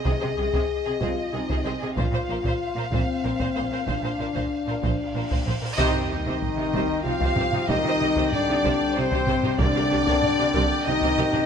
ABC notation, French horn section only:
X:1
M:3/4
L:1/8
Q:1/4=94
K:Cm
V:1 name="French horn section"
A3 F E z | F3 C3 | D4- D z | E4 F2 |
E2 D2 C2 | D4 E2 |]